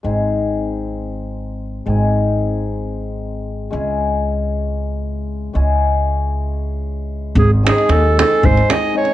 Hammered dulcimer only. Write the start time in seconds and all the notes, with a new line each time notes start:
0.03 G#3 C4 D#4 G#4
1.86 G#3 C4 D#4 G#4
3.71 G#3 C#4 E4 G#4
5.53 G#3 C#4 E4 G#4
7.63 G#3 C4 D#4 G#4
8.17 G#3 C4 D#4 G#4
8.68 G#3 C4 D#4 G#4
8.94 G#3 C4 D#4 G#4